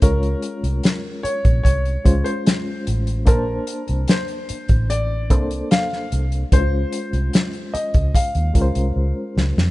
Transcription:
0.02 C#2 G#3 C#4 F4 A#4 C#5, kick, closed hi-hat
0.23 closed hi-hat
0.42 closed hi-hat
0.63 C2, closed hi-hat
0.83 snare, closed hi-hat
1.23 C#5, muted fingered electric bass stroke, closed hi-hat
1.45 A#1, kick, closed hi-hat
1.63 C2 C#5, kick, closed hi-hat
1.85 closed hi-hat
2.04 C#2 G#3 C#4 F4 C5, kick, closed hi-hat
2.24 C5, closed hi-hat
2.46 snare, closed hi-hat
2.87 A1, closed hi-hat
3.07 closed hi-hat
3.26 A#1 A#3 D4 A#4 C5 A5, kick, closed hi-hat
3.67 closed hi-hat
3.88 C2, closed hi-hat
4.08 C5, snare, closed hi-hat
4.28 closed hi-hat
4.49 muted fingered electric bass stroke, closed hi-hat
4.68 A1, kick, closed hi-hat
4.90 D5, closed hi-hat
5.30 C2 A#3 D4 A4 C5, kick, closed hi-hat
5.51 closed hi-hat
5.71 F5, snare, closed hi-hat
5.93 snare
6.12 C2, closed hi-hat
6.32 closed hi-hat
6.52 C#2 G#3 C#4 E4 C5, kick, closed hi-hat
6.60 F4
6.92 closed hi-hat
7.13 C2, closed hi-hat
7.33 snare, closed hi-hat
7.53 closed hi-hat
7.74 D#5, muted fingered electric bass stroke, closed hi-hat
7.94 C#2, kick, closed hi-hat
8.15 F5, kick, closed hi-hat
8.35 D#2, closed hi-hat
8.54 C#2 G#3 C#4 F4 A#4, kick, closed hi-hat
8.62 C5
8.75 C2, closed hi-hat
8.96 C#2
9.37 C#2, snare
9.57 F2, snare

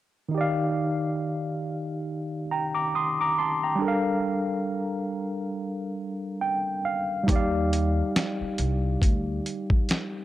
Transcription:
0.29 D#3 D#4
0.35 G4 D5
0.41 F5
2.52 G5 A#5
2.75 A#5 D6
2.95 C6 D#6
3.21 A#5 D6
3.38 A5 C6
3.63 G5 A#5
3.75 G3 D4
3.82 A4 A#4
3.88 F5
6.41 G5
6.85 F5
7.23 G3 D#4
7.28 D#2 G4, kick, closed hi-hat
7.32 D5 F5
7.73 closed hi-hat
8.16 finger snap, snare, closed hi-hat
8.41 muted upright bass stroke
8.58 C2, closed hi-hat
9.02 D2, kick, closed hi-hat
9.46 closed hi-hat
9.70 kick
9.89 finger snap, snare, closed hi-hat

